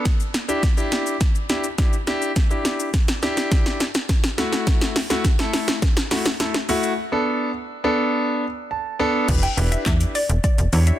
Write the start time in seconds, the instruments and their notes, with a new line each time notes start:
0.05 kick, snare, closed hi-hat, shaker
0.20 shaker
0.34 snare, closed hi-hat, shaker
0.48 grand piano D4 E4 G4, shaker
0.63 kick, snare, closed hi-hat, shaker
0.77 grand piano D4 E4 G4, shaker
0.92 snare, closed hi-hat, shaker
1.06 shaker
1.21 kick, snare, closed hi-hat, shaker
1.35 shaker
1.49 grand piano D4 E4 G4, snare, closed hi-hat, shaker
1.64 shaker
1.78 grand piano D4 E4 G4, kick, snare, closed hi-hat, shaker
1.93 shaker
2.07 grand piano D4 E4 G4, snare, closed hi-hat, shaker
2.22 shaker
2.36 kick, snare, closed hi-hat, shaker
2.50 grand piano D4 E4 G4, shaker
2.65 snare, closed hi-hat, shaker
2.80 shaker
2.94 kick, snare, closed hi-hat, shaker
3.08 snare, shaker
3.22 grand piano D4 E4 G4, snare, closed hi-hat, shaker
3.37 snare, shaker
3.52 kick, snare, closed hi-hat, shaker
3.66 snare, shaker
3.80 snare, closed hi-hat, shaker
3.95 snare, shaker
4.09 kick, snare, closed hi-hat, shaker
4.24 snare, shaker
4.38 grand piano A3 E4 F#4, snare, closed hi-hat, shaker
4.53 snare, shaker
4.67 kick, snare, closed hi-hat, shaker
4.81 snare, shaker
4.96 snare, open hi-hat, shaker
5.10 grand piano A3 E4 F#4, snare, shaker
5.25 kick, snare, closed hi-hat, shaker
5.39 grand piano A3 E4 A4, snare, shaker
5.53 snare, open hi-hat, shaker
5.68 snare, shaker
5.82 kick, snare, closed hi-hat, shaker
5.97 snare, shaker
6.11 grand piano A3 E4 F#4, snare, open hi-hat, shaker
6.25 snare, shaker
6.40 grand piano A3 E4 A4, snare, closed hi-hat, shaker
6.54 snare, shaker
6.69 grand piano A3 E4 F#4, open hi-hat, shaker
6.83 shaker
7.12 grand piano B3 D4 A4
7.84 grand piano B3 D4 A4
8.71 grand piano A5
8.99 grand piano B3 D4 A4
9.28 fm bass E1, grand piano D4 E4, kick, closed hi-hat, crash, shaker
9.43 synth pluck G5, closed hi-hat, shaker
9.57 fm bass E1, grand piano D4 E4 G4 B4, open hi-hat, shaker
9.72 synth pluck E5, closed hi-hat, shaker
9.86 fm bass E2, synth pluck E5, kick, snare, clap, closed hi-hat, shaker
10.01 closed hi-hat, shaker
10.15 synth pluck D5, open hi-hat, shaker
10.29 fm bass E1, closed hi-hat, shaker
10.44 synth pluck D5, kick, closed hi-hat, shaker
10.58 fm bass E1, closed hi-hat, shaker
10.72 fm bass E2, grand piano D4 E4 G4 C#5, open hi-hat, shaker
10.87 synth pluck E5, closed hi-hat, shaker